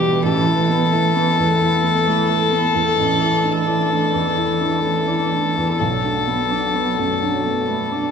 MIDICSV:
0, 0, Header, 1, 6, 480
1, 0, Start_track
1, 0, Tempo, 917431
1, 119, Time_signature, 3, 2, 24, 8
1, 2040, Tempo, 949367
1, 4171, End_track
2, 0, Start_track
2, 0, Title_t, "Harmonium"
2, 0, Program_c, 0, 20
2, 0, Note_on_c, 0, 62, 51
2, 0, Note_on_c, 0, 67, 50
2, 0, Note_on_c, 0, 71, 48
2, 109, Note_off_c, 0, 71, 0
2, 116, Note_on_c, 0, 69, 47
2, 116, Note_on_c, 0, 71, 56
2, 117, Note_off_c, 0, 67, 0
2, 118, Note_on_c, 0, 64, 56
2, 122, Note_off_c, 0, 62, 0
2, 1533, Note_off_c, 0, 71, 0
2, 1567, Note_on_c, 0, 74, 45
2, 2990, Note_off_c, 0, 69, 0
2, 2997, Note_off_c, 0, 64, 0
2, 2998, Note_on_c, 0, 69, 38
2, 2999, Note_on_c, 0, 66, 41
2, 4171, Note_off_c, 0, 66, 0
2, 4171, Note_off_c, 0, 69, 0
2, 4171, Note_off_c, 0, 74, 0
2, 4171, End_track
3, 0, Start_track
3, 0, Title_t, "Violin"
3, 0, Program_c, 1, 40
3, 0, Note_on_c, 1, 67, 63
3, 123, Note_on_c, 1, 69, 64
3, 131, Note_off_c, 1, 67, 0
3, 2988, Note_off_c, 1, 69, 0
3, 2991, Note_on_c, 1, 69, 50
3, 4171, Note_off_c, 1, 69, 0
3, 4171, End_track
4, 0, Start_track
4, 0, Title_t, "Felt piano"
4, 0, Program_c, 2, 0
4, 0, Control_c, 2, 64, 127
4, 0, Note_on_c, 2, 40, 60
4, 0, Note_on_c, 2, 47, 49
4, 0, Note_on_c, 2, 57, 41
4, 0, Note_on_c, 2, 59, 54
4, 0, Note_on_c, 2, 62, 51
4, 3, Note_off_c, 2, 47, 0
4, 3, Note_on_c, 2, 47, 50
4, 73, Note_off_c, 2, 59, 0
4, 101, Note_off_c, 2, 40, 0
4, 121, Note_off_c, 2, 47, 0
4, 121, Note_on_c, 2, 33, 62
4, 127, Control_c, 2, 64, 0
4, 128, Note_off_c, 2, 57, 0
4, 131, Note_off_c, 2, 62, 0
4, 201, Control_c, 2, 64, 127
4, 243, Note_on_c, 2, 64, 48
4, 361, Note_on_c, 2, 59, 48
4, 432, Note_off_c, 2, 64, 0
4, 483, Note_on_c, 2, 64, 51
4, 551, Note_off_c, 2, 59, 0
4, 607, Note_on_c, 2, 59, 53
4, 673, Note_off_c, 2, 64, 0
4, 726, Note_on_c, 2, 40, 41
4, 794, Note_off_c, 2, 59, 0
4, 843, Note_on_c, 2, 64, 48
4, 914, Note_off_c, 2, 40, 0
4, 957, Note_on_c, 2, 59, 44
4, 1032, Note_off_c, 2, 64, 0
4, 1083, Note_on_c, 2, 57, 44
4, 1149, Note_off_c, 2, 59, 0
4, 1200, Note_off_c, 2, 57, 0
4, 1200, Note_on_c, 2, 64, 45
4, 1319, Note_on_c, 2, 59, 43
4, 1389, Note_off_c, 2, 64, 0
4, 1434, Note_on_c, 2, 40, 43
4, 1508, Note_off_c, 2, 59, 0
4, 1535, Note_off_c, 2, 33, 0
4, 1554, Note_off_c, 2, 40, 0
4, 1558, Note_on_c, 2, 33, 54
4, 1566, Control_c, 2, 64, 0
4, 1653, Control_c, 2, 64, 127
4, 1682, Note_on_c, 2, 64, 42
4, 1799, Note_on_c, 2, 62, 44
4, 1872, Note_off_c, 2, 64, 0
4, 1922, Note_on_c, 2, 64, 48
4, 1991, Note_off_c, 2, 62, 0
4, 2046, Note_on_c, 2, 62, 46
4, 2112, Note_off_c, 2, 64, 0
4, 2161, Note_on_c, 2, 40, 40
4, 2232, Note_off_c, 2, 62, 0
4, 2282, Note_on_c, 2, 64, 43
4, 2349, Note_off_c, 2, 40, 0
4, 2395, Note_on_c, 2, 62, 36
4, 2470, Note_off_c, 2, 64, 0
4, 2520, Note_on_c, 2, 61, 33
4, 2587, Note_off_c, 2, 62, 0
4, 2638, Note_off_c, 2, 61, 0
4, 2642, Note_on_c, 2, 64, 37
4, 2761, Note_on_c, 2, 62, 39
4, 2831, Note_off_c, 2, 64, 0
4, 2884, Note_on_c, 2, 40, 37
4, 2951, Note_off_c, 2, 62, 0
4, 2978, Note_off_c, 2, 33, 0
4, 3001, Note_off_c, 2, 40, 0
4, 3002, Note_on_c, 2, 35, 47
4, 3006, Control_c, 2, 64, 0
4, 3082, Control_c, 2, 64, 127
4, 3123, Note_on_c, 2, 62, 35
4, 3240, Note_on_c, 2, 59, 38
4, 3312, Note_off_c, 2, 62, 0
4, 3362, Note_on_c, 2, 62, 36
4, 3430, Note_off_c, 2, 59, 0
4, 3477, Note_on_c, 2, 59, 39
4, 3550, Note_off_c, 2, 62, 0
4, 3597, Note_on_c, 2, 42, 36
4, 3668, Note_off_c, 2, 59, 0
4, 3720, Note_on_c, 2, 62, 36
4, 3788, Note_off_c, 2, 42, 0
4, 3836, Note_on_c, 2, 59, 33
4, 3910, Note_off_c, 2, 62, 0
4, 3956, Note_on_c, 2, 57, 27
4, 4028, Note_off_c, 2, 59, 0
4, 4077, Note_off_c, 2, 57, 0
4, 4080, Note_on_c, 2, 62, 36
4, 4171, Note_off_c, 2, 35, 0
4, 4171, Note_off_c, 2, 62, 0
4, 4171, End_track
5, 0, Start_track
5, 0, Title_t, "Viola"
5, 0, Program_c, 3, 41
5, 5, Note_on_c, 3, 55, 52
5, 122, Note_off_c, 3, 55, 0
5, 129, Note_on_c, 3, 52, 60
5, 245, Note_on_c, 3, 57, 58
5, 253, Note_off_c, 3, 52, 0
5, 371, Note_on_c, 3, 59, 60
5, 379, Note_off_c, 3, 57, 0
5, 483, Note_on_c, 3, 57, 54
5, 491, Note_off_c, 3, 59, 0
5, 599, Note_on_c, 3, 52, 61
5, 606, Note_off_c, 3, 57, 0
5, 720, Note_on_c, 3, 57, 51
5, 728, Note_off_c, 3, 52, 0
5, 841, Note_on_c, 3, 59, 49
5, 848, Note_off_c, 3, 57, 0
5, 960, Note_on_c, 3, 57, 51
5, 968, Note_off_c, 3, 59, 0
5, 1076, Note_on_c, 3, 52, 58
5, 1084, Note_off_c, 3, 57, 0
5, 1195, Note_on_c, 3, 57, 57
5, 1203, Note_off_c, 3, 52, 0
5, 1316, Note_on_c, 3, 59, 55
5, 1324, Note_off_c, 3, 57, 0
5, 1434, Note_on_c, 3, 57, 49
5, 1442, Note_off_c, 3, 59, 0
5, 1552, Note_off_c, 3, 57, 0
5, 1555, Note_on_c, 3, 50, 62
5, 1676, Note_on_c, 3, 52, 53
5, 1684, Note_off_c, 3, 50, 0
5, 1786, Note_on_c, 3, 57, 50
5, 1794, Note_off_c, 3, 52, 0
5, 1915, Note_on_c, 3, 62, 48
5, 1923, Note_off_c, 3, 57, 0
5, 2035, Note_on_c, 3, 57, 56
5, 2043, Note_off_c, 3, 62, 0
5, 2151, Note_on_c, 3, 52, 46
5, 2158, Note_off_c, 3, 57, 0
5, 2271, Note_on_c, 3, 50, 44
5, 2279, Note_off_c, 3, 52, 0
5, 2387, Note_on_c, 3, 52, 44
5, 2395, Note_off_c, 3, 50, 0
5, 2504, Note_on_c, 3, 57, 50
5, 2512, Note_off_c, 3, 52, 0
5, 2630, Note_on_c, 3, 62, 45
5, 2637, Note_off_c, 3, 57, 0
5, 2754, Note_on_c, 3, 57, 43
5, 2762, Note_off_c, 3, 62, 0
5, 2876, Note_on_c, 3, 52, 42
5, 2884, Note_off_c, 3, 57, 0
5, 2994, Note_off_c, 3, 52, 0
5, 2998, Note_on_c, 3, 54, 46
5, 3116, Note_on_c, 3, 57, 41
5, 3124, Note_off_c, 3, 54, 0
5, 3240, Note_on_c, 3, 59, 42
5, 3247, Note_off_c, 3, 57, 0
5, 3357, Note_on_c, 3, 62, 41
5, 3365, Note_off_c, 3, 59, 0
5, 3476, Note_on_c, 3, 59, 46
5, 3484, Note_off_c, 3, 62, 0
5, 3595, Note_on_c, 3, 57, 40
5, 3603, Note_off_c, 3, 59, 0
5, 3716, Note_on_c, 3, 54, 42
5, 3724, Note_off_c, 3, 57, 0
5, 3827, Note_on_c, 3, 57, 40
5, 3835, Note_off_c, 3, 54, 0
5, 3944, Note_on_c, 3, 59, 45
5, 3951, Note_off_c, 3, 57, 0
5, 4070, Note_on_c, 3, 62, 40
5, 4077, Note_off_c, 3, 59, 0
5, 4171, Note_off_c, 3, 62, 0
5, 4171, End_track
6, 0, Start_track
6, 0, Title_t, "Cello"
6, 0, Program_c, 4, 42
6, 0, Note_on_c, 4, 52, 57
6, 1554, Note_off_c, 4, 52, 0
6, 1559, Note_on_c, 4, 52, 56
6, 2997, Note_on_c, 4, 54, 42
6, 3005, Note_off_c, 4, 52, 0
6, 4171, Note_off_c, 4, 54, 0
6, 4171, End_track
0, 0, End_of_file